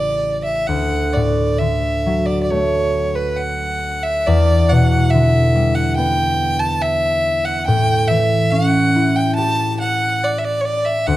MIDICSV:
0, 0, Header, 1, 3, 480
1, 0, Start_track
1, 0, Key_signature, 2, "major"
1, 0, Tempo, 938967
1, 350, Time_signature, 4, 2, 24, 8
1, 819, Tempo, 888889
1, 2259, Tempo, 849858
1, 6156, End_track
2, 0, Start_track
2, 0, Title_t, "Fiddle"
2, 0, Program_c, 0, 110
2, 0, Note_on_c, 0, 74, 65
2, 201, Note_off_c, 0, 74, 0
2, 225, Note_on_c, 0, 76, 67
2, 343, Note_on_c, 0, 78, 70
2, 351, Note_off_c, 0, 76, 0
2, 577, Note_on_c, 0, 74, 60
2, 585, Note_off_c, 0, 78, 0
2, 811, Note_on_c, 0, 76, 67
2, 818, Note_off_c, 0, 74, 0
2, 1174, Note_on_c, 0, 74, 67
2, 1182, Note_off_c, 0, 76, 0
2, 1262, Note_off_c, 0, 74, 0
2, 1265, Note_on_c, 0, 74, 50
2, 1305, Note_on_c, 0, 73, 71
2, 1314, Note_off_c, 0, 74, 0
2, 1657, Note_on_c, 0, 71, 62
2, 1665, Note_off_c, 0, 73, 0
2, 1772, Note_on_c, 0, 78, 73
2, 1781, Note_off_c, 0, 71, 0
2, 2132, Note_on_c, 0, 76, 78
2, 2140, Note_off_c, 0, 78, 0
2, 2257, Note_on_c, 0, 74, 85
2, 2266, Note_off_c, 0, 76, 0
2, 2496, Note_on_c, 0, 78, 74
2, 2505, Note_off_c, 0, 74, 0
2, 2730, Note_on_c, 0, 76, 80
2, 2739, Note_off_c, 0, 78, 0
2, 3096, Note_on_c, 0, 78, 75
2, 3104, Note_off_c, 0, 76, 0
2, 3210, Note_off_c, 0, 78, 0
2, 3214, Note_on_c, 0, 79, 89
2, 3571, Note_on_c, 0, 81, 84
2, 3580, Note_off_c, 0, 79, 0
2, 3699, Note_on_c, 0, 76, 84
2, 3708, Note_off_c, 0, 81, 0
2, 4056, Note_on_c, 0, 78, 86
2, 4064, Note_off_c, 0, 76, 0
2, 4169, Note_off_c, 0, 78, 0
2, 4173, Note_on_c, 0, 79, 95
2, 4410, Note_on_c, 0, 76, 84
2, 4419, Note_off_c, 0, 79, 0
2, 4654, Note_on_c, 0, 78, 91
2, 4663, Note_off_c, 0, 76, 0
2, 5022, Note_on_c, 0, 79, 81
2, 5030, Note_off_c, 0, 78, 0
2, 5126, Note_off_c, 0, 79, 0
2, 5129, Note_on_c, 0, 81, 92
2, 5359, Note_off_c, 0, 81, 0
2, 5384, Note_on_c, 0, 78, 94
2, 5630, Note_on_c, 0, 74, 83
2, 5639, Note_off_c, 0, 78, 0
2, 5713, Note_on_c, 0, 76, 56
2, 5721, Note_off_c, 0, 74, 0
2, 5748, Note_on_c, 0, 74, 83
2, 5756, Note_off_c, 0, 76, 0
2, 5841, Note_on_c, 0, 73, 55
2, 5849, Note_off_c, 0, 74, 0
2, 5864, Note_on_c, 0, 74, 78
2, 5873, Note_off_c, 0, 73, 0
2, 5976, Note_on_c, 0, 76, 82
2, 5984, Note_off_c, 0, 74, 0
2, 6101, Note_on_c, 0, 78, 94
2, 6109, Note_off_c, 0, 76, 0
2, 6156, Note_off_c, 0, 78, 0
2, 6156, End_track
3, 0, Start_track
3, 0, Title_t, "Harp"
3, 0, Program_c, 1, 46
3, 0, Note_on_c, 1, 33, 60
3, 0, Note_on_c, 1, 49, 47
3, 0, Note_on_c, 1, 52, 41
3, 0, Note_on_c, 1, 57, 41
3, 351, Note_on_c, 1, 38, 46
3, 375, Note_off_c, 1, 33, 0
3, 375, Note_off_c, 1, 52, 0
3, 376, Note_off_c, 1, 49, 0
3, 587, Note_off_c, 1, 57, 0
3, 591, Note_on_c, 1, 45, 41
3, 820, Note_on_c, 1, 50, 39
3, 846, Note_off_c, 1, 45, 0
3, 1068, Note_on_c, 1, 54, 43
3, 1309, Note_on_c, 1, 57, 46
3, 2262, Note_on_c, 1, 40, 56
3, 2287, Note_off_c, 1, 38, 0
3, 2287, Note_off_c, 1, 50, 0
3, 2287, Note_off_c, 1, 54, 0
3, 2509, Note_on_c, 1, 47, 46
3, 2753, Note_on_c, 1, 50, 49
3, 2775, Note_off_c, 1, 47, 0
3, 2985, Note_on_c, 1, 55, 49
3, 3146, Note_off_c, 1, 57, 0
3, 3226, Note_on_c, 1, 59, 53
3, 4184, Note_on_c, 1, 45, 57
3, 4212, Note_off_c, 1, 40, 0
3, 4212, Note_off_c, 1, 50, 0
3, 4212, Note_off_c, 1, 55, 0
3, 4422, Note_on_c, 1, 52, 44
3, 4660, Note_on_c, 1, 61, 54
3, 4908, Note_on_c, 1, 64, 49
3, 4980, Note_off_c, 1, 59, 0
3, 5147, Note_on_c, 1, 67, 54
3, 6104, Note_on_c, 1, 38, 56
3, 6129, Note_off_c, 1, 45, 0
3, 6129, Note_off_c, 1, 52, 0
3, 6138, Note_off_c, 1, 61, 0
3, 6156, Note_off_c, 1, 38, 0
3, 6156, Note_off_c, 1, 64, 0
3, 6156, Note_off_c, 1, 67, 0
3, 6156, End_track
0, 0, End_of_file